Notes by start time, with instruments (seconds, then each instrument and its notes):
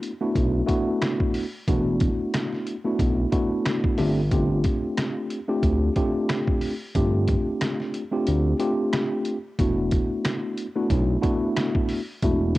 Already playing: tine electric piano A3 B3 D4 E4 F#4
0.03 closed hi-hat
0.21 tine electric piano A3 B3 D4 E4 F#4
0.35 analog synth bass B1, kick, closed hi-hat
0.66 tine electric piano A3 B3 D4 E4 F#4, kick, closed hi-hat
1.02 cross-stick, snare, closed hi-hat
1.20 kick
1.34 open hi-hat
1.68 analog synth bass E1, tine electric piano A3 B3 D4 E4 F#4, kick, closed hi-hat
2.00 kick, closed hi-hat
2.34 cross-stick, snare, closed hi-hat
2.53 snare
2.67 closed hi-hat
2.85 tine electric piano A3 B3 D4 E4 F#4
2.99 analog synth bass B1, kick, closed hi-hat
3.32 tine electric piano A3 B3 D4 E4 F#4, kick, closed hi-hat
3.65 cross-stick, snare, closed hi-hat
3.84 kick
3.98 analog synth bass G1, tine electric piano A3 C4 D4 F4 G4, open hi-hat
4.31 tine electric piano A3 C4 D4 F4 G4, kick, closed hi-hat
4.64 kick, closed hi-hat
4.97 cross-stick, snare, closed hi-hat
5.30 closed hi-hat
5.48 tine electric piano A3 C4 D4 F4 G4
5.63 analog synth bass D2, kick, closed hi-hat
5.96 tine electric piano A3 C4 D4 F4 G4, kick, closed hi-hat
6.29 cross-stick, snare, closed hi-hat
6.47 kick
6.61 open hi-hat
6.95 analog synth bass G1, tine electric piano A3 C4 D4 F4 G4, kick, closed hi-hat
7.28 kick, closed hi-hat
7.61 cross-stick, snare, closed hi-hat
7.80 snare
7.94 closed hi-hat
8.12 tine electric piano A3 C4 D4 F4 G4
8.27 analog synth bass D2, closed hi-hat
8.59 tine electric piano A3 C4 D4 F4 G4, closed hi-hat
8.93 cross-stick, snare, closed hi-hat
9.25 closed hi-hat
9.59 analog synth bass E1, tine electric piano A3 B3 D4 E4 F#4, kick, closed hi-hat
9.91 kick, closed hi-hat
10.25 cross-stick, snare, closed hi-hat
10.58 closed hi-hat
10.76 tine electric piano A3 B3 D4 E4 F#4
10.90 analog synth bass B1, kick, closed hi-hat
11.21 tine electric piano A3 B3 D4 E4 F#4, kick, closed hi-hat
11.56 cross-stick, snare, closed hi-hat
11.75 kick
11.89 open hi-hat
12.22 analog synth bass E1, tine electric piano A3 B3 D4 E4 F#4, kick, closed hi-hat
12.55 closed hi-hat